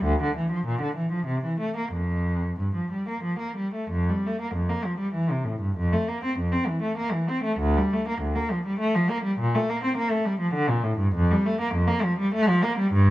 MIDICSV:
0, 0, Header, 1, 2, 480
1, 0, Start_track
1, 0, Key_signature, -1, "major"
1, 0, Tempo, 605449
1, 52, Time_signature, 3, 2, 24, 8
1, 1013, Tempo, 657174
1, 3413, Tempo, 606673
1, 6293, Tempo, 578592
1, 8213, Tempo, 606673
1, 10258, End_track
2, 0, Start_track
2, 0, Title_t, "Cello"
2, 0, Program_c, 0, 42
2, 38, Note_on_c, 0, 38, 80
2, 162, Note_off_c, 0, 38, 0
2, 177, Note_on_c, 0, 50, 58
2, 288, Note_on_c, 0, 52, 58
2, 292, Note_off_c, 0, 50, 0
2, 407, Note_off_c, 0, 52, 0
2, 407, Note_on_c, 0, 53, 54
2, 525, Note_on_c, 0, 46, 70
2, 526, Note_off_c, 0, 53, 0
2, 644, Note_off_c, 0, 46, 0
2, 648, Note_on_c, 0, 50, 53
2, 761, Note_on_c, 0, 52, 53
2, 766, Note_off_c, 0, 50, 0
2, 884, Note_off_c, 0, 52, 0
2, 890, Note_on_c, 0, 53, 48
2, 1000, Note_on_c, 0, 48, 63
2, 1010, Note_off_c, 0, 53, 0
2, 1120, Note_off_c, 0, 48, 0
2, 1135, Note_on_c, 0, 52, 52
2, 1247, Note_off_c, 0, 52, 0
2, 1247, Note_on_c, 0, 57, 54
2, 1363, Note_off_c, 0, 57, 0
2, 1372, Note_on_c, 0, 58, 48
2, 1488, Note_off_c, 0, 58, 0
2, 1490, Note_on_c, 0, 41, 63
2, 1964, Note_off_c, 0, 41, 0
2, 1975, Note_on_c, 0, 43, 46
2, 2089, Note_on_c, 0, 53, 41
2, 2091, Note_off_c, 0, 43, 0
2, 2207, Note_off_c, 0, 53, 0
2, 2211, Note_on_c, 0, 55, 42
2, 2327, Note_off_c, 0, 55, 0
2, 2337, Note_on_c, 0, 58, 43
2, 2443, Note_on_c, 0, 53, 48
2, 2449, Note_off_c, 0, 58, 0
2, 2558, Note_on_c, 0, 58, 43
2, 2564, Note_off_c, 0, 53, 0
2, 2687, Note_off_c, 0, 58, 0
2, 2687, Note_on_c, 0, 55, 44
2, 2814, Note_on_c, 0, 57, 43
2, 2816, Note_off_c, 0, 55, 0
2, 2935, Note_on_c, 0, 41, 71
2, 2942, Note_off_c, 0, 57, 0
2, 3061, Note_off_c, 0, 41, 0
2, 3070, Note_on_c, 0, 55, 51
2, 3188, Note_off_c, 0, 55, 0
2, 3197, Note_on_c, 0, 57, 52
2, 3304, Note_on_c, 0, 58, 56
2, 3307, Note_off_c, 0, 57, 0
2, 3399, Note_on_c, 0, 41, 56
2, 3412, Note_off_c, 0, 58, 0
2, 3516, Note_on_c, 0, 58, 50
2, 3522, Note_off_c, 0, 41, 0
2, 3638, Note_on_c, 0, 53, 50
2, 3642, Note_off_c, 0, 58, 0
2, 3748, Note_on_c, 0, 55, 55
2, 3762, Note_off_c, 0, 53, 0
2, 3866, Note_on_c, 0, 52, 59
2, 3874, Note_off_c, 0, 55, 0
2, 3993, Note_off_c, 0, 52, 0
2, 4004, Note_on_c, 0, 48, 51
2, 4109, Note_on_c, 0, 45, 49
2, 4125, Note_off_c, 0, 48, 0
2, 4235, Note_on_c, 0, 43, 55
2, 4239, Note_off_c, 0, 45, 0
2, 4359, Note_off_c, 0, 43, 0
2, 4368, Note_on_c, 0, 41, 76
2, 4486, Note_off_c, 0, 41, 0
2, 4496, Note_on_c, 0, 57, 52
2, 4611, Note_off_c, 0, 57, 0
2, 4616, Note_on_c, 0, 58, 55
2, 4731, Note_off_c, 0, 58, 0
2, 4740, Note_on_c, 0, 60, 55
2, 4851, Note_off_c, 0, 60, 0
2, 4855, Note_on_c, 0, 41, 57
2, 4961, Note_on_c, 0, 60, 57
2, 4968, Note_off_c, 0, 41, 0
2, 5081, Note_on_c, 0, 52, 54
2, 5082, Note_off_c, 0, 60, 0
2, 5200, Note_on_c, 0, 57, 58
2, 5201, Note_off_c, 0, 52, 0
2, 5317, Note_off_c, 0, 57, 0
2, 5322, Note_on_c, 0, 58, 68
2, 5435, Note_on_c, 0, 52, 59
2, 5438, Note_off_c, 0, 58, 0
2, 5560, Note_off_c, 0, 52, 0
2, 5569, Note_on_c, 0, 60, 58
2, 5688, Note_on_c, 0, 57, 59
2, 5690, Note_off_c, 0, 60, 0
2, 5812, Note_off_c, 0, 57, 0
2, 5815, Note_on_c, 0, 38, 78
2, 5937, Note_off_c, 0, 38, 0
2, 5951, Note_on_c, 0, 55, 57
2, 6066, Note_off_c, 0, 55, 0
2, 6077, Note_on_c, 0, 57, 60
2, 6186, Note_off_c, 0, 57, 0
2, 6196, Note_on_c, 0, 58, 58
2, 6298, Note_on_c, 0, 38, 56
2, 6301, Note_off_c, 0, 58, 0
2, 6415, Note_off_c, 0, 38, 0
2, 6418, Note_on_c, 0, 58, 60
2, 6538, Note_off_c, 0, 58, 0
2, 6549, Note_on_c, 0, 53, 54
2, 6664, Note_off_c, 0, 53, 0
2, 6672, Note_on_c, 0, 55, 59
2, 6783, Note_off_c, 0, 55, 0
2, 6783, Note_on_c, 0, 57, 68
2, 6898, Note_off_c, 0, 57, 0
2, 6911, Note_on_c, 0, 53, 60
2, 7025, Note_off_c, 0, 53, 0
2, 7033, Note_on_c, 0, 58, 63
2, 7147, Note_off_c, 0, 58, 0
2, 7150, Note_on_c, 0, 55, 64
2, 7264, Note_off_c, 0, 55, 0
2, 7280, Note_on_c, 0, 46, 85
2, 7390, Note_off_c, 0, 46, 0
2, 7412, Note_on_c, 0, 57, 71
2, 7518, Note_off_c, 0, 57, 0
2, 7529, Note_on_c, 0, 58, 70
2, 7635, Note_off_c, 0, 58, 0
2, 7648, Note_on_c, 0, 60, 62
2, 7751, Note_off_c, 0, 60, 0
2, 7756, Note_on_c, 0, 58, 71
2, 7863, Note_off_c, 0, 58, 0
2, 7872, Note_on_c, 0, 57, 64
2, 7983, Note_off_c, 0, 57, 0
2, 7997, Note_on_c, 0, 55, 63
2, 8105, Note_off_c, 0, 55, 0
2, 8112, Note_on_c, 0, 53, 68
2, 8221, Note_off_c, 0, 53, 0
2, 8227, Note_on_c, 0, 50, 81
2, 8335, Note_off_c, 0, 50, 0
2, 8350, Note_on_c, 0, 46, 70
2, 8462, Note_off_c, 0, 46, 0
2, 8462, Note_on_c, 0, 45, 68
2, 8582, Note_off_c, 0, 45, 0
2, 8583, Note_on_c, 0, 43, 66
2, 8705, Note_off_c, 0, 43, 0
2, 8711, Note_on_c, 0, 41, 90
2, 8832, Note_off_c, 0, 41, 0
2, 8843, Note_on_c, 0, 55, 71
2, 8958, Note_on_c, 0, 57, 73
2, 8959, Note_off_c, 0, 55, 0
2, 9075, Note_off_c, 0, 57, 0
2, 9077, Note_on_c, 0, 58, 68
2, 9184, Note_on_c, 0, 41, 77
2, 9190, Note_off_c, 0, 58, 0
2, 9290, Note_on_c, 0, 58, 72
2, 9302, Note_off_c, 0, 41, 0
2, 9415, Note_on_c, 0, 53, 72
2, 9416, Note_off_c, 0, 58, 0
2, 9534, Note_on_c, 0, 55, 74
2, 9537, Note_off_c, 0, 53, 0
2, 9653, Note_off_c, 0, 55, 0
2, 9656, Note_on_c, 0, 57, 85
2, 9769, Note_on_c, 0, 53, 78
2, 9774, Note_off_c, 0, 57, 0
2, 9886, Note_on_c, 0, 58, 73
2, 9892, Note_off_c, 0, 53, 0
2, 10005, Note_on_c, 0, 55, 77
2, 10010, Note_off_c, 0, 58, 0
2, 10119, Note_on_c, 0, 43, 99
2, 10127, Note_off_c, 0, 55, 0
2, 10243, Note_off_c, 0, 43, 0
2, 10258, End_track
0, 0, End_of_file